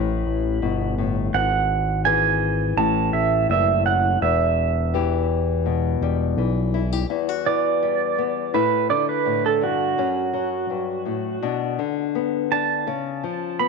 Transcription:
0.00 0.25 A1 medium
0.00 0.62 A2 medium
0.00 1.99 E3 medium
0.00 0.95 B5 medium
0.26 0.60 A1 medium
0.62 1.30 G1 medium
0.62 0.98 B2 medium
0.98 1.34 A2 medium
1.34 2.73 G#1 medium
1.34 2.73 G#2 medium
1.34 2.05 F#5 medium
2.05 3.89 E3 medium
2.05 2.73 G#4 medium
2.05 2.77 G#5 medium
2.77 3.11 A1 medium
2.77 4.21 A2 medium
2.77 3.14 A5 loud
3.13 3.47 A1 medium
3.13 3.47 E5 medium
3.49 4.17 F#1 medium
3.49 3.85 G2 medium
3.49 3.86 E5 medium
3.86 4.21 F#2 medium
3.86 4.19 F#5 medium
4.21 5.97 E1 medium
4.21 7.09 E2 medium
4.21 5.25 E5 medium
4.94 6.37 E3 medium
4.94 6.74 G4 medium
5.66 6.37 B2 medium
6.01 6.35 E1 medium
6.01 7.81 G3 medium
6.37 7.05 B1 loud
6.37 7.05 E3 medium
6.74 6.92 E4 medium
6.92 7.10 G4 soft
7.10 8.54 E2 medium
7.10 7.29 E4 medium
7.29 8.54 F#4 medium
7.46 8.49 E3 medium
7.46 8.51 D5 medium
7.83 8.54 G3 medium
8.18 8.54 B3 medium
8.54 8.89 A2 medium
8.54 9.98 E4 medium
8.54 8.89 B4 medium
8.90 9.98 D3 medium
8.90 9.07 D5 medium
9.09 9.43 B4 medium
9.26 9.62 A2 medium
9.46 9.62 A4 medium
9.61 9.98 G2 medium
9.61 11.76 F#4 medium
9.98 10.70 F#2 medium
9.98 11.38 C#4 medium
10.33 11.38 F#3 medium
10.70 11.06 G2 medium
11.05 11.42 A2 medium
11.43 11.79 B2 medium
11.43 12.50 D4 medium
11.79 12.87 D3 medium
12.15 12.83 B3 medium
12.51 12.83 D4 soft
12.51 13.57 A5 medium
12.87 13.23 C#3 medium
12.87 13.68 C#4 medium
13.23 13.68 F3 medium
13.60 13.68 B3 medium
13.60 13.68 B5 medium

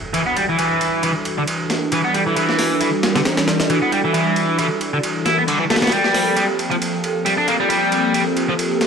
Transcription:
0.00 5.88 E3 medium
0.00 5.88 G3 medium
0.00 5.88 D4 medium
0.00 5.88 F#4 medium
0.00 5.88 A4 medium
0.00 impact medium
0.14 0.22 E3 medium
0.14 ride medium
0.27 0.36 B3 medium
0.37 0.44 G3 medium
0.37 ride medium
0.49 0.58 E3 medium
0.59 1.03 E3 medium
0.59 ride medium
0.81 ride medium
1.03 1.11 E3 medium
1.03 ride medium
1.25 ride medium
1.38 1.42 D3 medium
1.47 ride medium
1.70 snare soft
1.70 ride medium
1.92 2.00 E3 medium
1.92 ride medium
2.04 2.13 B3 medium
2.14 2.22 G3 medium
2.14 ride medium
2.27 2.36 E3 medium
2.36 2.80 E3 medium
2.36 ride medium
2.49 snare soft
2.59 snare soft
2.59 open hi-hat medium
2.81 2.89 E3 medium
2.81 ride medium
3.03 snare medium
3.03 ride medium
3.15 3.19 D3 medium
3.15 snare loud
3.15 ride medium
3.25 snare medium
3.25 ride medium
3.37 snare loud
3.37 ride medium
3.48 snare loud
3.48 ride medium
3.60 snare medium
3.60 ride medium
3.70 3.77 E3 medium
3.70 ride medium
3.82 3.91 B3 medium
3.92 4.00 G3 medium
3.92 ride medium
4.04 4.13 E3 medium
4.14 4.58 E3 medium
4.14 ride medium
4.36 ride medium
4.59 4.66 E3 medium
4.59 ride medium
4.81 ride medium
4.93 4.97 D3 medium
5.03 ride medium
5.26 5.37 E4 medium
5.26 snare soft
5.26 ride medium
5.38 5.42 B3 medium
5.48 5.59 D3 medium
5.48 ride medium
5.60 5.63 E3 medium
5.70 5.75 A3 medium
5.70 snare medium
5.70 ride medium
5.76 snare medium
5.76 ride medium
5.82 5.91 B3 medium
5.82 snare medium
5.82 ride medium
5.87 snare medium
5.87 ride medium
5.92 8.87 F3 medium
5.92 6.36 G3 medium
5.92 8.87 A#3 medium
5.92 8.87 C4 medium
5.92 8.87 G4 medium
5.92 8.87 A4 medium
5.92 ride medium
6.04 snare soft
6.14 snare soft
6.14 open hi-hat medium
6.37 6.44 G3 medium
6.37 ride medium
6.59 ride medium
6.71 6.75 F3 medium
6.71 ride soft
6.82 ride medium
7.04 ride medium
7.26 7.33 G3 medium
7.26 ride medium
7.38 7.47 D4 medium
7.48 7.55 A#3 medium
7.48 ride medium
7.60 7.69 G3 medium
7.70 8.13 G3 medium
7.70 ride medium
7.92 ride medium
8.14 8.22 G3 medium
8.14 ride medium
8.37 ride medium
8.49 8.53 F3 medium
8.59 ride medium
8.81 snare medium
8.81 ride medium

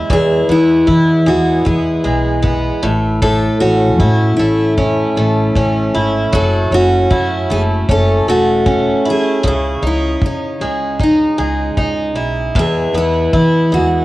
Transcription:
0.00 1.26 G#3 medium
0.00 0.18 C#4 medium
0.00 0.87 E4 medium
0.10 0.42 E2 medium
0.10 2.82 E2 medium
0.10 0.51 G#4 medium
0.10 kick loud
0.48 0.81 E2 medium
0.48 1.64 B3 soft
0.48 1.30 E4 medium
0.87 1.28 E3 medium
0.87 4.00 E4 medium
0.87 kick medium
1.26 1.58 E2 medium
1.26 2.03 G#3 medium
1.26 1.64 F#4 medium
1.65 1.98 E2 medium
1.65 2.41 B3 medium
1.65 2.40 G#4 medium
1.65 kick medium
2.04 2.68 B1 medium
2.04 2.90 G#3 medium
2.42 2.90 B3 medium
2.42 kick medium
2.83 3.47 A1 medium
2.83 3.21 A2 medium
3.22 6.33 A2 medium
3.22 3.60 A4 medium
3.22 kick medium
3.60 3.99 A1 medium
3.60 4.77 C#4 medium
3.60 4.36 F#4 medium
3.99 4.31 A2 medium
3.99 5.94 E4 medium
3.99 kick medium
4.37 5.02 A1 medium
4.37 5.17 A3 medium
4.37 4.74 E4 medium
4.78 5.56 C#4 medium
4.78 5.51 E4 medium
4.78 kick medium
5.16 5.48 A1 medium
5.16 7.50 A3 medium
5.55 5.87 A1 medium
5.55 6.72 C#4 medium
5.55 kick medium
5.94 6.26 G#1 medium
5.94 7.10 E4 medium
6.32 6.65 F#1 medium
6.32 9.44 F#3 medium
6.32 6.74 A4 medium
6.32 kick loud
6.71 7.03 F#1 medium
6.71 7.89 C#4 medium
6.71 7.51 F#4 medium
7.10 7.42 F#2 medium
7.10 9.05 E4 medium
7.10 kick medium
7.50 7.82 F#1 medium
7.50 8.27 A3 medium
7.50 7.62 G#4 medium
7.89 8.21 F#1 medium
7.89 8.66 C#4 medium
7.89 8.26 A4 medium
7.89 kick medium
8.27 8.91 E1 medium
8.27 9.52 A3 medium
8.27 9.09 F#4 medium
8.66 9.82 C#4 medium
8.66 kick loud
9.05 9.86 E4 medium
9.10 9.44 G#4 medium
9.43 9.76 C#2 medium
9.43 12.55 C#3 medium
9.43 kick loud
9.47 9.86 G#4 medium
9.82 10.14 C#2 medium
9.82 10.99 D#4 medium
9.87 10.25 E4 medium
10.22 10.54 C#3 medium
10.22 kick loud
10.26 11.03 C#4 medium
10.61 11.25 C#2 medium
10.61 11.38 G#3 medium
11.00 11.76 D#4 medium
11.00 12.14 D#4 medium
11.00 kick medium
11.38 11.71 C#2 medium
11.38 13.72 G#3 medium
11.77 12.16 C#2 medium
11.77 12.63 D#4 medium
11.77 kick medium
12.16 12.48 B1 medium
12.16 13.33 E4 medium
12.55 12.87 E2 medium
12.55 14.05 E2 medium
12.55 kick loud
12.59 12.94 G#4 medium
12.94 13.26 E2 medium
12.94 14.05 B3 medium
12.98 13.76 E4 medium
13.33 13.74 E3 medium
13.33 14.05 E4 medium
13.33 kick medium
13.72 14.04 E2 medium
13.72 14.05 G#3 soft
13.72 14.05 F#4 medium

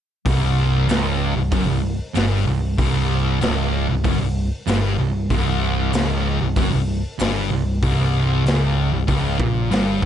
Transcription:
0.26 0.85 C1 loud
0.26 0.88 C2 loud
0.26 kick loud
0.26 open hi-hat medium
0.89 1.33 C#1 medium
0.89 1.35 C#2 loud
0.89 snare loud
0.89 open hi-hat medium
1.37 1.51 C1 medium
1.37 1.52 C2 medium
1.52 1.66 F#1 medium
1.52 1.67 F#2 loud
1.52 kick loud
1.52 open hi-hat medium
1.69 1.98 C1 medium
1.69 1.93 C2 medium
2.15 2.45 G1 medium
2.15 2.46 G2 loud
2.15 snare loud
2.15 open hi-hat medium
2.47 2.76 C1 medium
2.47 2.72 C2 medium
2.78 3.37 C1 loud
2.78 3.40 C2 loud
2.78 kick loud
2.78 open hi-hat medium
3.41 3.86 C#1 loud
3.41 3.87 C#2 loud
3.41 snare loud
3.41 open hi-hat medium
3.89 4.04 C1 medium
3.89 4.05 C2 medium
4.04 4.19 F#1 medium
4.04 4.19 F#2 loud
4.04 kick loud
4.04 open hi-hat medium
4.21 4.50 C1 medium
4.21 4.46 C2 medium
4.67 4.97 G1 medium
4.67 4.98 G2 loud
4.67 snare loud
4.67 open hi-hat medium
4.98 5.28 C1 medium
4.98 5.24 C2 medium
5.30 5.89 C1 loud
5.30 5.92 C2 loud
5.30 kick loud
5.30 open hi-hat medium
5.93 6.37 C#1 loud
5.93 6.40 C#2 loud
5.93 snare loud
5.93 open hi-hat medium
6.41 6.55 C1 medium
6.41 6.56 C2 medium
6.56 6.71 F#1 medium
6.56 6.72 F#2 loud
6.56 kick loud
6.56 open hi-hat medium
6.73 7.02 C1 medium
6.73 6.98 C2 medium
7.19 7.49 G1 loud
7.19 7.50 G2 medium
7.19 snare loud
7.19 open hi-hat medium
7.51 7.80 C1 medium
7.51 7.77 C2 medium
7.82 8.41 C1 medium
7.82 8.44 C2 loud
7.82 kick loud
7.82 open hi-hat medium
8.46 8.89 C#1 medium
8.46 8.92 C#2 loud
8.46 snare loud
8.46 open hi-hat medium
8.93 9.07 C1 medium
8.93 9.07 C2 medium
9.07 9.38 C#1 loud
9.07 9.38 C#2 loud
9.07 kick loud
9.07 open hi-hat medium
9.39 9.69 A#1 medium
9.39 9.70 A#2 loud
9.39 kick loud
9.71 10.00 G1 medium
9.71 10.02 G2 loud
9.71 snare loud
9.71 open hi-hat medium
10.02 10.06 G#1 medium
10.02 10.06 G#2 medium
10.02 kick loud

